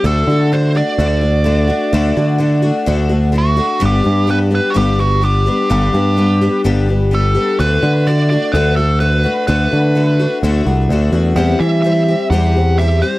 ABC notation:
X:1
M:4/4
L:1/16
Q:1/4=127
K:G
V:1 name="Lead electric guitar"
A4 c2 d8- d2- | d12 F4 | G4 B2 B3/2 F/2 G2 F2 G4 | G8 z4 A4 |
B4 d2 d2 B2 A2 B4 | B8 z8 | f2 e2 e4 f4 e2 c2 |]
V:2 name="Twelve-string acoustic guitar"
[D,A,DF]2 [A,DF]2 [D,A,DF]2 [A,DF]2 [D,A,DF]2 [A,DF]2 [D,A,DF]2 [A,DF]2 | [D,A,DF]2 [A,DF]2 [D,A,DF]2 [A,DF]2 [D,A,DF]2 [A,DF]2 [D,A,DF]2 [A,DF]2 | [G,,D,G,B,DG]2 [G,B,DG]2 [G,B,DG]2 [G,B,DG]2 [G,,D,G,B,DG]2 [G,B,DG]2 [G,B,DG]2 [G,B,DG]2 | [G,,D,G,B,DG]2 [G,B,DG]2 [G,B,DG]2 [G,B,DG]2 [G,,D,G,B,DG]2 [G,B,DG]2 [G,B,DG]2 [G,B,DG]2 |
[D,A,DF]2 [A,DF]2 [D,A,DF]2 [A,DF]2 [D,A,DF]2 [A,DF]2 [D,A,DF]2 [A,DF]2 | [D,A,DF]2 [A,DF]2 [D,A,DF]2 [A,DF]2 [D,A,DF]2 [A,DF]2 [D,A,DF]2 [A,DF]2 | [E,G,CG]2 [G,CG]2 [E,G,CG]2 [G,CG]2 [E,G,CG]2 [G,CG]2 [E,G,CG]2 [G,CG]2 |]
V:3 name="Picked electric bass" clef=bass
D,,2 D,6 D,,8 | D,,2 D,6 D,,8 | G,,,2 G,,6 G,,,8 | G,,,2 G,,6 G,,,8 |
D,,2 D,6 D,,8 | D,,2 D,6 D,,2 C,,2 D,,2 E,,2 | E,,2 E,6 E,,8 |]